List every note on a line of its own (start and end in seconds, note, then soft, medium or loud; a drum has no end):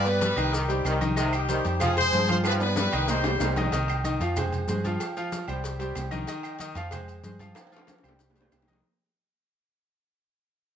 0.00 0.32 G2 loud
0.05 0.31 B3 medium
0.05 0.21 G4 medium
0.05 0.32 B4 medium
0.05 0.20 B4 loud
0.05 0.32 D5 medium
0.05 high conga soft
0.05 maracas soft
0.21 0.39 G3 medium
0.21 0.51 G4 medium
0.21 0.51 B4 loud
0.21 cowbell medium
0.21 high conga loud
0.21 low agogo medium
0.21 maracas medium
0.36 0.82 C2 loud
0.36 0.63 D#3 loud
0.36 0.63 D#4 medium
0.36 0.63 D#5 medium
0.36 high conga soft
0.36 low agogo loud
0.36 claves medium
0.36 maracas soft
0.53 0.71 D#3 medium
0.53 1.02 D#4 medium
0.53 1.01 G4 medium
0.53 cowbell loud
0.53 high conga soft
0.53 maracas medium
0.68 0.95 G3 medium
0.68 0.95 G4 medium
0.68 0.95 C5 medium
0.68 cowbell medium
0.68 high conga soft
0.68 maracas soft
0.85 1.59 C2 medium
0.85 1.03 D#3 medium
0.85 cowbell medium
0.85 high conga soft
0.85 low agogo medium
0.85 claves medium
0.85 maracas medium
1.01 1.14 D#3 medium
1.01 1.14 D#4 medium
1.01 1.14 D#5 medium
1.01 cowbell medium
1.01 high conga medium
1.01 maracas soft
1.16 1.34 C3 loud
1.16 1.43 D#3 medium
1.16 1.43 D#4 medium
1.16 1.43 D#5 medium
1.16 cowbell loud
1.16 high conga soft
1.16 low agogo medium
1.16 maracas medium
1.33 1.78 D#4 medium
1.33 1.79 G4 medium
1.33 low agogo loud
1.33 claves medium
1.33 maracas soft
1.49 1.66 D#3 medium
1.49 1.75 G3 medium
1.49 1.75 G4 medium
1.49 1.75 C5 medium
1.49 cowbell medium
1.49 high conga medium
1.49 maracas medium
1.65 2.10 F2 medium
1.65 cowbell medium
1.65 high conga soft
1.65 low agogo medium
1.65 maracas soft
1.80 1.94 F3 medium
1.80 1.98 F3 medium
1.80 1.94 F4 medium
1.80 1.96 F4 medium
1.80 1.97 G#4 loud
1.80 1.94 F5 medium
1.80 cowbell loud
1.80 high conga soft
1.80 low conga medium
1.80 low agogo loud
1.80 claves medium
1.80 maracas medium
1.97 2.23 G#3 medium
1.97 2.23 G#4 medium
1.97 2.27 G#4 loud
1.97 2.23 C5 medium
1.97 2.27 C5 loud
1.97 high conga soft
1.97 low conga medium
1.97 low agogo medium
1.97 maracas soft
2.12 2.87 G2 loud
2.12 2.30 F3 medium
2.12 cowbell medium
2.12 high conga medium
2.12 low timbale medium
2.12 maracas medium
2.28 2.55 F3 medium
2.28 2.55 F4 medium
2.28 2.37 G#4 medium
2.28 2.36 C5 loud
2.28 2.55 F5 medium
2.28 cowbell medium
2.28 high conga medium
2.28 low agogo medium
2.28 maracas soft
2.44 2.62 F3 loud
2.44 2.54 G4 medium
2.44 2.53 B4 loud
2.44 cowbell loud
2.44 high conga soft
2.44 high timbale loud
2.44 low agogo loud
2.44 claves medium
2.44 maracas medium
2.60 2.87 B3 medium
2.60 2.77 G4 medium
2.60 2.87 B4 medium
2.60 2.76 B4 loud
2.60 2.87 D5 medium
2.60 high conga soft
2.60 high timbale medium
2.60 maracas soft
2.76 2.93 G3 medium
2.76 3.08 G4 medium
2.76 3.07 B4 loud
2.76 cowbell medium
2.76 high bongo loud
2.76 high conga loud
2.76 low agogo medium
2.76 maracas medium
2.92 3.38 C2 loud
2.92 3.19 D#3 loud
2.92 3.19 D#4 medium
2.92 3.19 D#5 medium
2.92 low agogo loud
2.92 claves medium
2.92 maracas soft
3.08 3.26 D#3 medium
3.08 3.54 G4 medium
3.08 3.54 C5 loud
3.08 cowbell loud
3.08 low bongo loud
3.08 low timbale medium
3.08 maracas medium
3.24 3.51 G3 medium
3.24 3.51 G4 medium
3.24 3.51 C5 medium
3.24 cowbell medium
3.24 low bongo loud
3.24 high conga soft
3.24 low timbale medium
3.24 maracas soft
3.40 3.69 C2 loud
3.40 3.57 D#3 medium
3.40 cowbell medium
3.40 low bongo medium
3.40 high conga soft
3.40 low timbale medium
3.40 low agogo loud
3.40 claves medium
3.40 maracas medium
3.56 3.70 D#3 medium
3.56 3.70 D#4 medium
3.56 3.70 D#5 medium
3.56 cowbell medium
3.56 low bongo loud
3.56 high conga medium
3.56 low timbale medium
3.56 maracas soft
3.72 4.17 C2 loud
3.72 3.99 D#3 loud
3.72 3.99 D#4 medium
3.72 3.99 D#5 medium
3.72 cowbell loud
3.72 high conga soft
3.72 low agogo medium
3.72 maracas medium
3.88 high conga soft
3.88 low agogo loud
3.88 claves medium
3.88 maracas soft
4.04 4.18 D#3 medium
4.04 4.18 D#4 medium
4.04 4.18 D#5 medium
4.04 cowbell medium
4.04 high conga medium
4.04 maracas medium
4.20 4.65 F2 medium
4.20 4.34 F3 medium
4.20 4.34 F4 medium
4.20 4.34 F5 medium
4.20 cowbell medium
4.20 high conga soft
4.20 low agogo medium
4.20 maracas soft
4.36 4.63 G#3 medium
4.36 4.63 G#4 medium
4.36 4.63 C5 medium
4.36 cowbell loud
4.36 high conga soft
4.36 low conga medium
4.36 low agogo loud
4.36 claves medium
4.36 maracas medium
4.52 high conga soft
4.52 low conga medium
4.52 low agogo medium
4.52 maracas soft
4.67 4.96 G2 loud
4.67 4.82 G#3 medium
4.67 4.82 G#4 medium
4.67 4.82 C5 medium
4.67 cowbell medium
4.67 high conga medium
4.67 low timbale medium
4.67 maracas medium
4.84 5.11 F3 medium
4.84 5.11 F4 medium
4.84 5.11 F5 medium
4.84 cowbell medium
4.84 high conga medium
4.84 low agogo medium
4.84 maracas soft
5.00 cowbell loud
5.00 high conga soft
5.00 low agogo loud
5.00 claves medium
5.00 maracas medium
5.17 5.43 F3 loud
5.17 5.43 F4 loud
5.17 5.43 F5 loud
5.17 high conga soft
5.17 maracas soft
5.32 cowbell medium
5.32 high conga loud
5.32 low agogo medium
5.32 maracas medium
5.48 5.93 C2 loud
5.48 5.74 G3 medium
5.48 5.75 G4 medium
5.48 5.75 C5 medium
5.48 high conga soft
5.48 low agogo loud
5.48 claves medium
5.48 maracas soft
5.64 cowbell loud
5.64 high conga soft
5.64 maracas medium
5.79 6.06 G3 medium
5.79 6.06 G4 medium
5.79 6.06 C5 medium
5.79 cowbell medium
5.79 high conga soft
5.79 maracas soft
5.95 6.24 C2 loud
5.95 cowbell medium
5.95 high conga soft
5.95 low timbale medium
5.95 low agogo loud
5.95 claves medium
5.95 maracas medium
6.11 6.24 D#3 medium
6.11 6.25 D#4 loud
6.11 6.25 D#5 medium
6.11 cowbell medium
6.11 high conga medium
6.11 maracas soft
6.27 6.54 D#3 medium
6.27 6.54 D#4 medium
6.27 6.54 D#5 loud
6.27 cowbell loud
6.27 low agogo medium
6.27 maracas medium
6.43 high conga soft
6.43 low agogo loud
6.43 claves medium
6.43 maracas soft
6.59 6.73 D#3 medium
6.59 6.73 D#4 medium
6.59 6.73 D#5 medium
6.59 cowbell medium
6.59 high conga medium
6.59 maracas medium
6.75 7.20 F2 medium
6.75 6.89 F3 medium
6.75 6.89 F4 medium
6.75 6.89 F5 loud
6.75 cowbell medium
6.75 high conga soft
6.75 low agogo medium
6.75 maracas soft
6.91 7.18 G#3 medium
6.91 7.18 G#4 medium
6.91 7.18 C5 medium
6.91 cowbell loud
6.91 high conga soft
6.91 low conga medium
6.91 low agogo loud
6.91 claves medium
6.91 maracas medium
7.08 high conga soft
7.08 low agogo medium
7.08 maracas soft
7.23 7.52 G2 medium
7.23 7.37 G#3 medium
7.23 7.37 G#4 medium
7.23 7.37 C5 medium
7.23 cowbell medium
7.23 high conga loud
7.23 maracas medium
7.39 7.66 F3 medium
7.39 7.66 F4 medium
7.39 7.66 F5 medium
7.39 cowbell medium
7.39 high conga loud
7.39 low agogo medium
7.39 maracas soft
7.55 cowbell loud
7.55 high bongo medium
7.55 high conga soft
7.55 high timbale loud
7.55 low agogo loud
7.55 claves medium
7.55 maracas medium
7.67 high timbale loud
7.72 7.98 F3 loud
7.72 7.98 F4 loud
7.72 7.98 F5 loud
7.72 high conga soft
7.72 maracas soft
7.76 high bongo loud
7.76 high timbale loud
7.87 cowbell medium
7.87 high bongo loud
7.87 high conga loud
7.87 high timbale loud
7.87 low agogo medium
7.87 maracas medium
7.98 high bongo medium
8.03 8.48 C2 medium
8.03 8.30 G3 medium
8.03 8.30 G4 medium
8.03 8.30 C5 medium
8.03 low agogo loud
8.03 claves medium
8.03 maracas soft
8.09 high bongo medium
8.09 low timbale medium
8.19 cowbell loud
8.19 low bongo medium
8.19 high conga soft
8.19 maracas medium
8.30 low bongo medium
8.30 low timbale loud
8.36 8.62 G3 medium
8.36 8.62 G4 medium
8.36 8.62 C5 medium
8.36 cowbell medium
8.36 high conga soft
8.36 maracas soft
8.41 low bongo medium
8.41 low timbale loud
8.52 8.80 C2 loud
8.52 cowbell medium
8.52 low bongo loud
8.52 low timbale loud
8.52 low agogo loud
8.52 claves medium
8.52 maracas medium
8.62 low bongo loud
8.62 low timbale medium
8.67 8.80 D#3 medium
8.67 8.80 D#4 loud
8.67 8.81 D#5 medium
8.67 cowbell medium
8.67 high conga medium
8.67 maracas soft
8.73 low bongo loud
8.73 low timbale medium